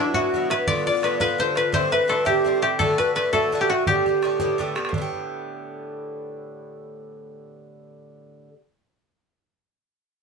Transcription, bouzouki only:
0.00 0.13 B2 medium
0.00 0.14 F#3 medium
0.00 0.14 B3 medium
0.00 0.14 E4 medium
0.15 0.32 B2 soft
0.15 0.33 F#3 medium
0.15 0.34 B3 medium
0.15 0.33 E4 medium
0.34 0.50 B2 medium
0.34 0.51 F#3 medium
0.34 0.50 B3 medium
0.34 0.49 E4 medium
0.50 0.68 F#3 soft
0.50 0.68 B3 soft
0.50 0.67 E4 soft
0.68 0.87 G2 medium
0.68 0.87 D3 medium
0.68 0.87 B3 medium
0.68 0.85 F4 medium
0.86 1.02 D3 soft
0.86 1.03 B3 soft
0.86 1.03 F4 soft
1.02 1.20 G2 medium
1.02 1.20 D3 medium
1.02 1.19 B3 medium
1.02 1.19 F4 medium
1.20 1.37 G2 medium
1.20 1.38 D3 medium
1.20 1.39 B3 medium
1.20 1.39 F4 medium
1.38 1.56 G2 medium
1.38 1.57 D3 medium
1.38 1.56 B3 medium
1.38 1.54 F4 medium
1.55 1.72 D3 soft
1.55 1.74 B3 soft
1.55 1.73 F4 soft
1.73 1.92 G2 medium
1.73 1.93 D3 medium
1.73 1.92 C4 medium
1.73 1.90 E4 medium
1.91 2.08 D3 soft
1.91 2.09 C4 soft
1.91 2.09 E4 soft
2.08 2.26 G2 medium
2.08 2.25 D3 medium
2.08 2.25 C4 medium
2.08 2.24 E4 medium
2.25 2.43 G2 soft
2.25 2.45 D3 medium
2.25 2.45 C4 medium
2.25 2.45 E4 medium
2.45 2.62 G2 medium
2.45 2.63 D3 medium
2.45 2.62 C4 medium
2.45 2.61 E4 medium
2.62 2.79 D3 soft
2.62 2.80 C4 soft
2.62 2.79 E4 soft
2.79 2.99 A2 medium
2.79 2.99 D3 medium
2.79 2.99 A3 medium
2.79 2.97 F#4 medium
2.98 3.15 D3 soft
2.98 3.16 A3 soft
2.98 3.16 F#4 soft
3.15 3.33 A2 medium
3.15 3.33 D3 medium
3.15 3.32 A3 medium
3.15 3.32 F#4 medium
3.33 3.51 A2 medium
3.33 3.52 D3 medium
3.33 3.53 A3 medium
3.33 3.52 F#4 medium
3.52 3.69 A2 medium
3.52 3.70 D3 medium
3.52 3.69 A3 medium
3.52 3.68 F#4 medium
3.70 3.87 D3 soft
3.70 3.87 A3 soft
3.70 3.87 F#4 soft
3.87 4.06 A2 medium
3.87 4.07 D3 medium
3.87 4.06 B3 medium
3.87 4.05 G4 medium
4.06 4.22 D3 soft
4.06 4.23 B3 soft
4.06 4.23 G4 soft
4.22 4.40 A2 medium
4.22 4.40 D3 medium
4.22 4.39 B3 medium
4.22 4.39 G4 medium
4.40 4.57 A2 medium
4.40 4.58 D3 medium
4.40 4.59 B3 medium
4.40 4.59 G4 medium
4.58 4.76 A2 medium
4.58 4.76 D3 medium
4.58 4.76 B3 medium
4.58 4.74 G4 medium
4.75 4.93 D3 soft
4.75 4.94 B3 soft
4.75 4.93 G4 medium
4.89 8.48 A2 medium
4.94 8.53 D3 medium
4.94 8.57 B3 medium
5.02 8.60 G4 medium

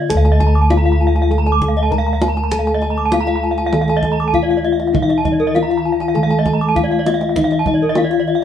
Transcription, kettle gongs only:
0.00 0.66 D3 medium
0.10 1.87 A4 medium
0.14 3.71 D2 loud
0.71 0.79 D#4 soft
1.92 2.00 D#4 soft
2.52 4.29 A4 medium
3.13 3.21 D#4 soft
3.73 5.50 D#3 medium
4.33 4.41 D#4 soft
4.94 5.55 D#4 medium
5.56 5.64 D#4 soft
6.17 7.93 D#3 medium
6.78 6.86 D#4 soft
7.37 7.97 D#4 medium
7.98 8.06 D#4 medium

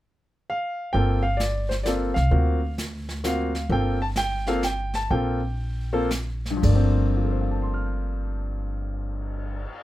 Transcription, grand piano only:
0.50 0.92 F5 medium
0.93 1.21 A#3 medium
0.93 1.22 C4 medium
0.93 1.21 F4 medium
0.93 1.22 A4 medium
0.93 1.25 G5 medium
1.23 1.39 F5 medium
1.37 1.70 D5 medium
1.69 1.74 C5 medium
1.83 2.13 A#3 medium
1.83 2.13 C4 medium
1.83 2.14 F4 medium
1.83 2.14 A4 medium
1.83 1.91 D5 medium
2.14 2.73 F5 medium
2.31 2.59 A#3 medium
2.31 2.59 C4 medium
2.31 2.59 F4 medium
2.31 2.60 F#4 medium
3.24 3.51 A#3 medium
3.24 3.51 C4 medium
3.24 3.51 F4 medium
3.24 3.52 F#4 medium
3.24 3.68 F5 medium
3.70 3.97 A#3 medium
3.70 3.97 C4 medium
3.70 3.98 F4 soft
3.70 3.98 A4 medium
3.70 3.99 G5 medium
4.02 4.07 A5 medium
4.17 4.45 G5 medium
4.48 4.61 A#3 medium
4.48 4.61 C4 medium
4.48 4.62 F4 medium
4.48 4.62 A4 medium
4.48 4.62 F5 medium
4.64 4.96 G5 medium
4.95 5.10 A5 medium
5.10 5.39 A#3 medium
5.10 5.40 C4 soft
5.10 5.40 F4 medium
5.10 5.40 A4 medium
5.10 6.06 G5 medium
5.93 6.08 A#3 medium
5.93 6.08 C4 medium
5.93 6.09 F4 medium
5.93 6.09 A4 medium
6.50 9.56 G2 medium
6.57 9.62 F3 medium
6.63 9.69 A3 medium
6.63 9.66 D5 medium
6.69 9.75 A#3 medium
6.75 9.81 C4 medium
7.17 9.83 F4 soft
7.24 9.83 A4 soft
7.32 9.83 C5 soft
7.41 9.83 F5 soft
7.51 9.83 A5 soft
7.62 9.83 C6 soft
7.74 9.83 F6 soft

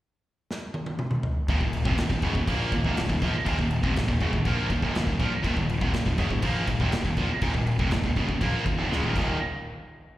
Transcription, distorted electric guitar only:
1.49 1.59 D#2 medium
1.49 1.60 A#2 loud
1.61 1.81 D#2 medium
1.61 1.81 A#2 medium
1.85 1.96 F2 medium
1.85 1.97 C3 medium
1.97 2.09 D#2 medium
1.97 2.09 A#2 medium
2.10 2.23 D#2 medium
2.10 2.23 A#2 medium
2.23 2.35 F#2 medium
2.23 2.35 C#3 medium
2.35 2.48 D#2 medium
2.35 2.47 A#2 medium
2.48 2.72 A#2 medium
2.48 2.72 F3 loud
2.48 2.72 A#3 loud
2.74 2.85 D#2 medium
2.74 2.84 A#2 medium
2.86 2.96 D#2 medium
2.86 2.96 A#2 loud
2.97 3.08 D#2 medium
2.97 3.09 A#2 medium
3.09 3.22 D#2 medium
3.09 3.21 A#2 medium
3.22 3.34 A#2 medium
3.22 3.34 F3 loud
3.33 muted distorted electric guitar stroke medium
3.45 3.57 D#2 medium
3.45 3.57 A#2 loud
3.58 3.79 D#2 medium
3.58 3.79 A#2 medium
3.83 3.95 F2 medium
3.83 3.95 C3 loud
3.95 4.07 D#2 medium
3.95 4.07 A#2 medium
4.08 4.20 D#2 medium
4.08 4.20 A#2 medium
4.20 4.32 F#2 medium
4.20 4.33 C#3 loud
4.33 4.45 D#2 medium
4.33 4.44 A#2 medium
4.46 4.69 A#2 loud
4.46 4.70 F3 loud
4.46 4.70 A#3 loud
4.70 4.82 D#2 medium
4.70 4.83 A#2 medium
4.83 4.94 D#2 medium
4.83 4.95 A#2 loud
4.96 5.06 D#2 medium
4.96 5.07 A#2 medium
5.08 5.20 D#2 medium
5.08 5.18 A#2 medium
5.20 5.31 A#2 loud
5.20 5.32 F3 loud
5.33 muted distorted electric guitar stroke medium
5.43 5.55 D#2 loud
5.43 5.55 A#2 loud
5.56 5.76 D#2 medium
5.56 5.76 A#2 medium
5.81 5.93 F2 medium
5.81 5.93 C3 medium
5.93 6.05 D#2 medium
5.93 6.05 A#2 medium
6.06 6.18 D#2 medium
6.06 6.18 A#2 medium
6.18 6.30 F#2 medium
6.18 6.30 C#3 medium
6.31 6.43 D#2 medium
6.31 6.41 A#2 medium
6.43 6.66 A#2 loud
6.43 6.67 F3 loud
6.43 6.67 A#3 loud
6.67 6.79 D#2 medium
6.67 6.79 A#2 medium
6.80 6.92 D#2 medium
6.80 6.92 A#2 medium
6.93 7.04 D#2 medium
6.93 7.04 A#2 medium
7.05 7.18 D#2 medium
7.05 7.16 A#2 medium
7.18 7.29 A#2 medium
7.18 7.29 F3 loud
7.31 muted distorted electric guitar stroke medium
7.42 7.53 D#2 medium
7.42 7.53 A#2 loud
7.54 7.74 D#2 medium
7.54 7.74 A#2 medium
7.79 7.91 F2 medium
7.79 7.91 C3 medium
7.92 8.04 D#2 medium
7.92 8.05 A#2 medium
8.05 8.16 D#2 medium
8.05 8.17 A#2 medium
8.17 8.28 F#2 medium
8.17 8.28 C#3 loud
8.30 8.42 D#2 medium
8.30 8.40 A#2 medium
8.41 8.65 A#2 loud
8.41 8.65 F3 loud
8.41 8.66 A#3 loud
8.66 8.77 D#2 medium
8.66 8.79 A#2 medium
8.79 8.90 D#2 medium
8.79 8.91 A#2 loud
8.92 9.03 C#3 loud
8.92 9.03 G#3 loud
9.04 9.15 D#2 medium
9.04 9.15 A#2 medium
9.16 9.36 D#2 medium
9.16 9.36 A#2 medium
9.16 9.36 D#3 loud

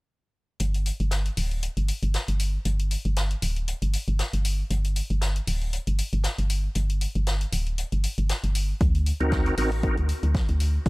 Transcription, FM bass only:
0.60 0.91 G1 medium
1.00 1.30 G1 medium
1.37 1.68 D1 medium
1.77 1.92 G1 medium
2.03 2.17 G1 medium
2.28 2.58 G1 medium
2.65 2.96 G1 loud
3.05 3.35 G1 medium
3.42 3.73 D1 medium
3.82 3.97 G1 medium
4.08 4.22 G1 medium
4.33 4.63 G1 medium
4.71 5.01 G1 medium
5.10 5.40 G1 medium
5.47 5.78 D1 medium
5.87 6.02 G1 medium
6.13 6.27 G1 medium
6.38 6.68 G1 medium
6.76 7.07 G1 loud
7.15 7.45 G1 medium
7.53 7.83 D1 medium
7.92 8.07 G1 medium
8.18 8.33 G1 medium
8.44 8.74 G1 medium
8.81 9.12 D2 medium
9.21 9.50 D2 medium
9.58 9.89 A1 medium
9.97 10.12 D2 medium
10.23 10.38 D2 medium
10.49 10.79 D2 medium
10.86 10.89 D2 loud

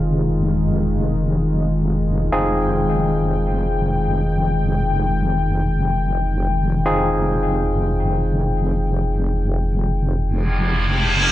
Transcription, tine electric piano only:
0.00 2.29 C4 medium
0.00 2.30 D#4 medium
0.00 2.30 F4 medium
0.00 2.29 G#4 medium
2.32 6.82 C4 medium
2.32 6.82 D#4 medium
2.32 6.82 F4 medium
2.32 6.82 G#4 medium
6.85 11.32 C4 medium
6.85 11.32 D#4 medium
6.85 11.32 F4 medium
6.85 11.32 G#4 medium

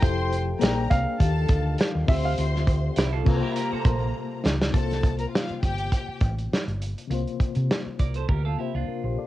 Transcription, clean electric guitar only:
2.98 3.13 E4 medium
2.98 3.12 G4 medium
3.13 3.41 F4 medium
3.13 3.41 A4 medium
3.43 3.56 E4 medium
3.43 3.55 G4 medium
3.56 3.71 G4 medium
3.56 3.71 A#4 medium
3.72 4.57 A4 medium
3.72 4.57 C5 medium
8.00 8.15 A#4 soft
8.00 8.15 D5 medium
8.16 8.29 A4 soft
8.16 8.28 C5 medium
8.29 8.44 G4 medium
8.29 8.44 A#4 medium
8.45 8.58 F4 medium
8.45 8.58 A4 medium
8.59 8.74 E4 soft
8.59 8.74 G4 medium
8.75 9.27 D4 medium
8.75 9.27 F4 medium

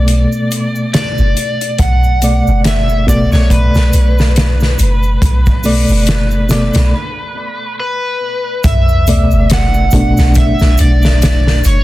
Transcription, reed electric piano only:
0.00 2.17 B2 medium
0.00 2.18 A3 medium
0.00 2.19 D5 loud
2.23 3.04 B2 medium
2.23 3.04 A3 medium
2.23 3.04 D5 medium
3.06 5.60 B2 medium
3.06 5.61 A3 medium
3.06 5.61 D5 loud
5.64 6.46 B2 medium
5.64 6.46 A3 medium
5.64 6.47 D5 medium
6.49 6.93 B2 medium
6.49 6.93 A3 medium
6.49 6.94 D5 loud
9.07 9.89 B2 medium
9.07 9.89 A3 medium
9.07 9.90 D5 medium
9.92 11.84 B2 medium
9.92 11.84 A3 medium
9.92 11.84 D4 medium

